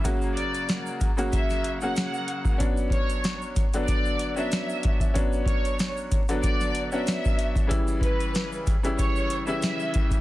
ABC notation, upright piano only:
X:1
M:4/4
L:1/16
Q:"Swing 16ths" 1/4=94
K:Bm
V:1 name="Upright piano"
[C,F,^A,F]6 z [C,F,A,F]4 [C,F,A,F]4- [C,F,A,F] | [F,B,CD]6 z [D,F,B,D]4 [F,B,CD]4- [F,B,CD] | [F,B,CD]6 z [D,F,B,D]4 [F,B,CD]4- [F,B,CD] | [C,E,G,E]6 z [C,E,G,E]4 [C,E,G,E]4- [C,E,G,E] |]